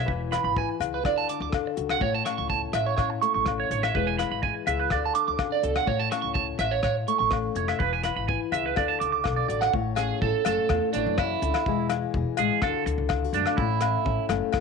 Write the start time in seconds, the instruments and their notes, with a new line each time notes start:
Already playing: nylon-string guitar E4
0.05 upright bass E1, nylon-string guitar E3 B4, muted clean electric guitar stroke, kick
0.31 nylon-string guitar E4, clean electric guitar B5, cross-stick, closed hi-hat, low agogo
0.44 upright bass G#1, clean electric guitar B5
0.56 nylon-string guitar B4, clean electric guitar G#5, kick
0.80 upright bass C#2, nylon-string guitar G#4, closed hi-hat, low agogo
0.94 clean electric guitar B4
1.03 upright bass D2, nylon-string guitar D3 A4, clean electric guitar D5, kick, cross-stick, low agogo
1.18 clean electric guitar A5
1.29 nylon-string guitar D4, clean electric guitar D6, closed hi-hat
1.40 upright bass D2, clean electric guitar D6
1.52 nylon-string guitar A4, kick, cross-stick, low agogo
1.67 muted clean electric guitar stroke
1.76 upright bass C#2, nylon-string guitar F#4, closed hi-hat
1.89 clean electric guitar F#5, cross-stick, low agogo
2.00 upright bass A1, nylon-string guitar A2 C#5, clean electric guitar C#5, kick
2.14 clean electric guitar A5
2.25 nylon-string guitar C#4, clean electric guitar C#6, cross-stick, closed hi-hat, low agogo
2.38 upright bass C#2, clean electric guitar C#6
2.49 nylon-string guitar C#5, clean electric guitar A5, kick
2.73 upright bass A1, nylon-string guitar E4, clean electric guitar E5, cross-stick, closed hi-hat, low agogo
2.86 clean electric guitar C#5
2.96 upright bass A2, nylon-string guitar C#4, clean electric guitar C#5, kick, cross-stick, low agogo
3.10 muted clean electric guitar stroke
3.22 nylon-string guitar A3, clean electric guitar C#6, closed hi-hat
3.34 upright bass A1, clean electric guitar C#6
3.46 nylon-string guitar C#3, kick, cross-stick, low agogo
3.60 clean electric guitar C#5
3.71 upright bass A1, nylon-string guitar D3, clean electric guitar C#5, closed hi-hat
3.83 clean electric guitar E5, cross-stick, low agogo
3.94 upright bass E1, nylon-string guitar E3 G#3 E4 G#4 B4, clean electric guitar B4, kick
4.07 clean electric guitar G#5
4.18 nylon-string guitar E4, clean electric guitar B5, cross-stick, closed hi-hat, low agogo
4.31 upright bass G#1, clean electric guitar B5
4.43 nylon-string guitar B4, clean electric guitar G#5, kick
4.67 upright bass C#2, nylon-string guitar G#4, clean electric guitar E5, closed hi-hat, low agogo
4.79 clean electric guitar B4
4.90 upright bass D2, nylon-string guitar D3 A4, clean electric guitar D5, kick, cross-stick, low agogo
5.05 clean electric guitar A5
5.15 nylon-string guitar D4, clean electric guitar D6, closed hi-hat
5.28 upright bass D2, clean electric guitar D6
5.37 nylon-string guitar C#3, kick, cross-stick, low agogo
5.52 clean electric guitar D5
5.62 upright bass C#2, nylon-string guitar B2, clean electric guitar A4, closed hi-hat
5.76 clean electric guitar F#5, cross-stick, low agogo
5.86 upright bass A1, nylon-string guitar A2 C#5, clean electric guitar C#5, kick
5.99 clean electric guitar A5
6.11 nylon-string guitar C#4, clean electric guitar C#6, cross-stick, closed hi-hat, low agogo
6.22 upright bass C#2, clean electric guitar C#6
6.34 nylon-string guitar C#5, clean electric guitar A5, kick
6.59 upright bass A1, clean electric guitar E5, muted nylon-string guitar stroke, cross-stick, closed hi-hat, low agogo
6.71 clean electric guitar C#5
6.83 upright bass A2, clean electric guitar C#5, muted nylon-string guitar stroke, kick, cross-stick, low agogo
7.07 nylon-string guitar A3, clean electric guitar C#6, closed hi-hat
7.19 upright bass A1, clean electric guitar C#6
7.31 nylon-string guitar C#4, kick, cross-stick, low agogo
7.56 upright bass F1, nylon-string guitar E4, clean electric guitar C#5, closed hi-hat
7.68 clean electric guitar E5, cross-stick, low agogo
7.79 upright bass E1, nylon-string guitar E3 B4, clean electric guitar B4, kick
7.93 clean electric guitar G#5
8.04 nylon-string guitar E4, clean electric guitar B5, cross-stick, closed hi-hat, low agogo
8.16 upright bass G#1, clean electric guitar B5
8.28 nylon-string guitar B4, clean electric guitar G#5, kick
8.52 upright bass C#2, nylon-string guitar G#4, clean electric guitar E5, closed hi-hat, low agogo
8.66 clean electric guitar B4
8.76 upright bass D2, nylon-string guitar D3 A4, clean electric guitar D5, kick, cross-stick, low agogo
8.88 clean electric guitar A5
9.00 upright bass C#2, nylon-string guitar D4, clean electric guitar D6, closed hi-hat
9.12 clean electric guitar D6
9.24 upright bass B1, nylon-string guitar A4, kick, cross-stick, low agogo
9.36 clean electric guitar D5
9.48 upright bass A1, nylon-string guitar F#4, clean electric guitar D5, closed hi-hat
9.61 clean electric guitar F#5, cross-stick, low agogo
9.73 upright bass A1, nylon-string guitar A2 C#5, kick
9.96 nylon-string guitar C#4, clean electric guitar G#4, cross-stick, closed hi-hat, low agogo
10.21 upright bass A1, nylon-string guitar E4, clean electric guitar A4, kick
10.45 upright bass F#1, nylon-string guitar A3 C#4, clean electric guitar A4, cross-stick, closed hi-hat, low agogo
10.69 upright bass E2, nylon-string guitar E4, kick, cross-stick, low agogo
10.93 upright bass A1, nylon-string guitar E3 C#5, clean electric guitar D4, closed hi-hat
11.06 upright bass F#1
11.18 nylon-string guitar C#3, clean electric guitar E4, kick, cross-stick, low agogo
11.42 upright bass C#2, nylon-string guitar D3, closed hi-hat
11.54 cross-stick, low agogo
11.66 upright bass E1, nylon-string guitar E3 G#3, kick
11.89 nylon-string guitar E4, cross-stick, closed hi-hat, low agogo
12.14 upright bass E1, nylon-string guitar G#4, kick
12.37 upright bass A1, nylon-string guitar G#3 E4, clean electric guitar G#4, closed hi-hat, low agogo
12.62 upright bass D2, nylon-string guitar D3 F#4, clean electric guitar A4, kick, cross-stick, low agogo
12.86 upright bass D2, muted clean electric guitar stroke, closed hi-hat
12.98 upright bass C#2
13.09 nylon-string guitar E4, kick, cross-stick, low agogo
13.24 nylon-string guitar F#4
13.33 upright bass F#2, nylon-string guitar A3 D4, clean electric guitar D4, closed hi-hat
13.46 cross-stick, low agogo
13.57 upright bass A1, nylon-string guitar A2 C#4, clean electric guitar E4, kick
13.81 nylon-string guitar C#4, cross-stick, closed hi-hat, low agogo
14.05 upright bass A1, nylon-string guitar C#4, kick
14.29 upright bass F#1, nylon-string guitar A3 C#4, cross-stick, closed hi-hat, low agogo
14.53 upright bass E2, nylon-string guitar E4, kick, cross-stick, low agogo